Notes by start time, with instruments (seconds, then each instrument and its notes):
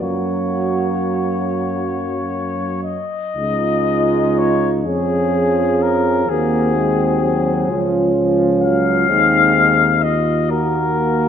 0.01 tuba F#2, trombone F#3, euphonium A#3, french horn section F#4, flugelhorn C#5
2.83 flugelhorn D#5
3.36 tuba C#2, trombone G#3, euphonium D#4, french horn section F4
4.38 flugelhorn C#5
4.85 tuba F2, trombone F3, euphonium C#4, french horn section G#4, flugelhorn G#4
5.82 flugelhorn A#4
6.28 tuba D#2, trombone A#3, euphonium C4, french horn section F#4, flugelhorn G#4
6.76 trombone G#3
7.22 trombone F#3
7.68 tuba C#2, trombone F3, euphonium C#4, french horn section F4
8.17 trombone F3
8.63 trombone F#3, flugelhorn F5
9.09 tuba D#2, trombone G#3, euphonium C4, french horn section D#4
9.56 french horn section D#4
10.02 french horn section F4, flugelhorn D#5
10.50 trombone A#3, euphonium A#3, french horn section F#4, flugelhorn A#4